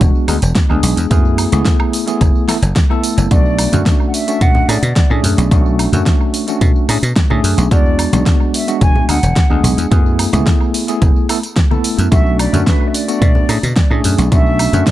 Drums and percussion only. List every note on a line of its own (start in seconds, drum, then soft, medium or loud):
0.01 kick loud
0.01 closed hi-hat medium
0.01 tambourine soft
0.28 open hi-hat loud
0.28 tambourine medium
0.28 high woodblock medium
0.42 closed hi-hat medium
0.42 tambourine soft
0.55 kick loud
0.55 snare loud
0.55 closed hi-hat medium
0.55 tambourine soft
0.83 open hi-hat loud
0.83 tambourine medium
0.97 closed hi-hat medium
0.97 tambourine soft
1.11 kick loud
1.11 closed hi-hat medium
1.11 tambourine soft
1.38 open hi-hat loud
1.38 tambourine medium
1.38 high woodblock medium
1.52 closed hi-hat medium
1.52 tambourine soft
1.65 kick loud
1.65 snare loud
1.65 closed hi-hat medium
1.65 tambourine soft
1.80 high woodblock medium
1.93 open hi-hat loud
1.93 tambourine medium
2.08 closed hi-hat medium
2.08 tambourine soft
2.21 kick loud
2.21 closed hi-hat medium
2.21 tambourine soft
2.48 snare medium
2.48 open hi-hat loud
2.48 tambourine medium
2.48 high woodblock medium
2.63 closed hi-hat medium
2.63 tambourine soft
2.76 kick loud
2.76 snare loud
2.76 closed hi-hat medium
2.76 tambourine soft
3.04 open hi-hat loud
3.04 tambourine medium
3.18 closed hi-hat medium
3.18 tambourine soft
3.31 kick loud
3.31 closed hi-hat medium
3.31 tambourine soft
3.59 open hi-hat loud
3.59 tambourine medium
3.59 high woodblock medium
3.73 closed hi-hat medium
3.73 tambourine soft
3.73 high conga loud
3.73 low conga medium
3.86 kick loud
3.86 snare loud
3.86 closed hi-hat medium
3.86 tambourine soft
4.14 open hi-hat loud
4.14 tambourine medium
4.28 closed hi-hat medium
4.28 tambourine soft
4.41 kick loud
4.41 closed hi-hat medium
4.41 tambourine soft
4.55 low conga loud
4.69 open hi-hat loud
4.69 tambourine medium
4.69 high woodblock medium
4.83 closed hi-hat medium
4.83 tambourine soft
4.83 high conga medium
4.96 kick loud
4.96 snare loud
4.96 closed hi-hat medium
4.96 tambourine soft
5.24 open hi-hat loud
5.24 tambourine medium
5.24 low conga medium
5.38 closed hi-hat medium
5.38 tambourine soft
5.51 kick loud
5.51 closed hi-hat medium
5.51 tambourine soft
5.79 open hi-hat loud
5.79 tambourine medium
5.79 high woodblock medium
5.93 closed hi-hat medium
5.93 tambourine soft
5.93 high conga medium
5.93 low conga medium
6.06 kick loud
6.06 snare loud
6.06 closed hi-hat medium
6.06 tambourine soft
6.34 open hi-hat loud
6.34 tambourine medium
6.48 closed hi-hat medium
6.48 tambourine soft
6.61 kick loud
6.61 closed hi-hat medium
6.61 tambourine soft
6.89 open hi-hat loud
6.89 tambourine medium
6.89 high woodblock medium
7.03 closed hi-hat medium
7.03 tambourine soft
7.16 kick loud
7.16 snare loud
7.16 closed hi-hat medium
7.16 tambourine soft
7.30 high conga medium
7.44 open hi-hat loud
7.44 tambourine medium
7.58 closed hi-hat medium
7.58 tambourine soft
7.71 kick loud
7.71 closed hi-hat medium
7.71 tambourine soft
7.99 open hi-hat loud
7.99 tambourine medium
7.99 high woodblock medium
8.13 closed hi-hat medium
8.13 tambourine soft
8.13 high conga medium
8.13 low conga medium
8.26 kick loud
8.26 snare loud
8.26 closed hi-hat medium
8.26 tambourine soft
8.54 open hi-hat loud
8.54 tambourine medium
8.68 closed hi-hat medium
8.68 tambourine soft
8.81 kick loud
8.81 closed hi-hat medium
8.81 tambourine soft
8.96 low conga medium
9.09 open hi-hat loud
9.09 tambourine medium
9.09 high woodblock medium
9.23 closed hi-hat medium
9.23 tambourine soft
9.23 high conga medium
9.36 kick loud
9.36 snare loud
9.36 closed hi-hat medium
9.36 tambourine soft
9.64 open hi-hat loud
9.64 tambourine medium
9.64 low conga loud
9.78 closed hi-hat medium
9.78 tambourine soft
9.92 kick loud
9.92 closed hi-hat medium
9.92 tambourine soft
10.19 open hi-hat loud
10.19 tambourine medium
10.19 high woodblock medium
10.33 closed hi-hat medium
10.33 tambourine soft
10.33 high conga loud
10.33 low conga medium
10.46 kick loud
10.46 snare loud
10.46 closed hi-hat medium
10.46 tambourine soft
10.74 open hi-hat loud
10.74 tambourine medium
10.88 closed hi-hat medium
10.88 tambourine soft
11.02 kick loud
11.02 closed hi-hat soft
11.02 tambourine soft
11.29 open hi-hat loud
11.29 tambourine medium
11.29 high woodblock medium
11.43 closed hi-hat medium
11.43 tambourine soft
11.56 kick loud
11.56 snare loud
11.56 closed hi-hat soft
11.56 tambourine soft
11.71 high conga medium
11.84 open hi-hat loud
11.84 tambourine medium
11.99 closed hi-hat medium
11.99 tambourine soft
12.12 kick loud
12.12 closed hi-hat medium
12.12 tambourine soft
12.39 open hi-hat loud
12.39 tambourine medium
12.39 high woodblock medium
12.54 closed hi-hat medium
12.54 tambourine soft
12.54 high conga loud
12.54 low conga medium
12.67 kick loud
12.67 snare loud
12.67 closed hi-hat medium
12.67 tambourine soft
12.94 open hi-hat loud
12.94 tambourine medium
13.09 closed hi-hat medium
13.09 tambourine soft
13.22 kick loud
13.22 closed hi-hat soft
13.22 tambourine soft
13.35 low conga medium
13.49 open hi-hat loud
13.49 tambourine medium
13.49 high woodblock medium
13.63 closed hi-hat medium
13.63 tambourine soft
13.63 high conga medium
13.76 kick loud
13.76 snare loud
13.76 closed hi-hat medium
13.76 tambourine soft
14.04 open hi-hat loud
14.04 tambourine medium
14.04 low conga medium
14.18 closed hi-hat medium
14.18 tambourine soft
14.32 kick loud
14.32 closed hi-hat medium
14.32 tambourine soft
14.59 open hi-hat loud
14.59 tambourine medium
14.59 high woodblock medium
14.73 closed hi-hat medium
14.73 tambourine soft
14.73 high conga medium
14.73 low conga medium
14.87 kick loud
14.87 snare loud
14.87 closed hi-hat medium
14.87 tambourine soft